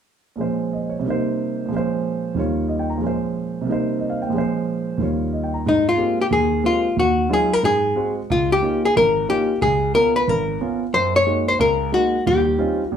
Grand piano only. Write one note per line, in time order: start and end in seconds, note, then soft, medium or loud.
0.36 1.03 A#2 soft
0.36 1.04 F3 soft
0.36 1.04 G#3 soft
0.40 1.05 C#4 soft
0.40 1.05 C5 soft
0.73 0.97 D#5 soft
0.89 1.11 C#5 soft
0.99 1.67 C3 soft
0.99 1.69 G3 soft
1.05 1.70 A#3 soft
1.05 1.72 D#4 soft
1.10 1.73 C5 medium
1.66 2.34 A#2 soft
1.66 2.35 F3 soft
1.71 2.36 G#3 soft
1.71 2.38 C#4 soft
1.76 2.39 C5 medium
2.34 3.01 D#2 soft
2.34 3.01 D#3 soft
2.34 3.02 G3 soft
2.34 3.03 F4 soft
2.39 3.03 C#5 medium
2.68 2.88 D#5 soft
2.79 2.96 G5 soft
2.90 3.07 A#5 soft
2.96 3.64 A#2 soft
2.96 3.65 F3 soft
3.01 3.67 G#3 soft
3.01 3.68 C#4 soft
3.07 3.70 C5 soft
3.61 4.30 C3 soft
3.61 4.31 G3 soft
3.67 4.33 A#3 soft
3.67 4.34 D#4 soft
3.72 4.36 C5 soft
3.99 4.19 D#5 soft
4.10 4.27 F5 soft
4.22 4.39 G5 soft
4.27 4.96 A#2 soft
4.27 4.97 F3 soft
4.33 4.99 G#3 soft
4.33 5.00 C#4 soft
4.38 5.01 C5 medium
4.98 5.64 D#2 soft
4.98 5.65 D#3 soft
4.98 5.65 G3 soft
4.98 5.66 F4 soft
5.03 5.67 C#5 soft
5.33 5.52 D#5 soft
5.44 5.60 G5 soft
5.54 5.71 A#5 soft
5.66 5.94 G#2 medium
5.97 6.20 G#3 soft
5.97 6.20 A#3 soft
5.97 6.20 C4 soft
5.97 6.20 G4 soft
6.31 6.59 D#2 medium
6.63 6.86 G#3 soft
6.63 6.86 A#3 soft
6.63 6.86 C4 soft
6.63 6.86 G4 soft
6.96 7.25 D#2 medium
7.29 7.52 F#3 soft
7.29 7.52 G#3 soft
7.29 7.52 C#4 soft
7.29 7.52 D#4 soft
7.29 7.52 F4 soft
7.63 7.91 G#2 medium
7.96 8.18 G#3 soft
7.96 8.18 C4 soft
7.96 8.18 F#4 soft
8.30 8.58 C#2 medium
8.62 8.84 A#3 soft
8.62 8.84 C#4 soft
8.62 8.85 D#4 soft
8.62 8.85 F4 soft
8.96 9.24 G#1 medium
9.29 9.51 A#3 soft
9.29 9.51 C#4 soft
9.29 9.51 D#4 soft
9.29 9.51 F4 soft
9.61 9.90 C#2 medium
9.95 10.17 B3 soft
9.95 10.17 C#4 soft
9.95 10.17 F4 soft
10.27 10.56 G#1 medium
10.61 10.83 B3 soft
10.61 10.83 C#4 soft
10.61 10.83 F4 soft
10.93 11.22 F#2 medium
11.26 11.49 G#3 soft
11.26 11.49 A#3 soft
11.26 11.49 D#4 soft
11.26 11.49 F#4 soft
11.59 11.88 C#2 medium
11.59 11.88 C#3 medium
11.92 12.15 G#3 soft
11.92 12.15 A#3 soft
11.92 12.15 D#4 soft
11.92 12.15 F#4 soft
12.26 12.54 D#2 medium
12.26 12.55 G3 medium
12.58 12.81 G3 soft
12.58 12.81 C4 soft
12.58 12.81 C#4 soft
12.58 12.81 D#4 soft
12.58 12.81 F4 medium
12.92 12.97 A#1 medium